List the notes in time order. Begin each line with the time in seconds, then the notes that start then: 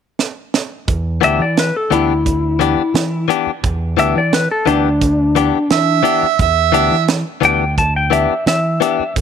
0.19 snare
0.54 snare
0.88 E2, kick, closed hi-hat
1.21 D2 E3 B3 D4 G4 E5, closed hi-hat
1.39 E3 D5
1.57 B4, snare, closed hi-hat
1.76 A4
1.91 D2 E3 B3 D4 E4 G4, closed hi-hat
2.26 kick, closed hi-hat
2.59 E3 B3 D4 G4, closed hi-hat
2.77 muted fingered electric bass stroke
2.94 E3, snare, closed hi-hat
3.28 E3 B3 D4 G4, closed hi-hat
3.46 muted fingered electric bass stroke
3.63 E2, kick, closed hi-hat
3.97 D2 E3 B3 D4 G4 E5, closed hi-hat
4.15 E3 D5
4.33 B4, snare, closed hi-hat
4.51 A4
4.66 D2 E3 B3 D4 G4, closed hi-hat
5.01 kick, closed hi-hat
5.35 E3 B3 D4 G4, closed hi-hat
5.70 E3 E5, snare, closed hi-hat
6.03 E3 B3 D4 G4, closed hi-hat
6.23 muted fingered electric bass stroke
6.39 E2 E5, kick, closed hi-hat
6.72 D2 E3 B3 D4 G4, closed hi-hat
6.91 E3
7.08 snare, closed hi-hat
7.41 D2 E3 B3 D4 G4, closed hi-hat
7.45 G5
7.78 A5, kick, closed hi-hat
7.96 G5
8.10 E3 B3 D4 G4 E5, closed hi-hat
8.46 E3 E5, snare, closed hi-hat
8.80 E3 B3 D4 G4, closed hi-hat
8.99 muted fingered electric bass stroke
9.16 E2, kick, closed hi-hat